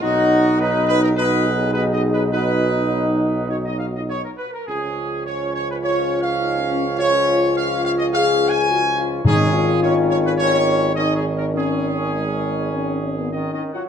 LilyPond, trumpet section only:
\new Staff \with { instrumentName = "Trumpet section" } { \time 4/4 \key des \mixolydian \tempo 4 = 104 ges'4 ces''8 ces''16 bes'16 ces''4 \tuplet 3/2 { ces''8 ees''8 ces''8 } | ces''2 des''16 ees''16 f''16 ees''16 des''16 bes'16 ces''16 bes'16 | aes'4 des''8 des''16 ces''16 \tuplet 3/2 { des''4 f''8~ } f''4 | des''4 f''8 f''16 ees''16 \tuplet 3/2 { f''4 aes''8~ } aes''4 |
aes'4 des''8 des''16 ces''16 des''4 \tuplet 3/2 { ees''8 aes'8 bes'8 } | aes'2. \tuplet 3/2 { ees''8 ees''8 ges''8 } | }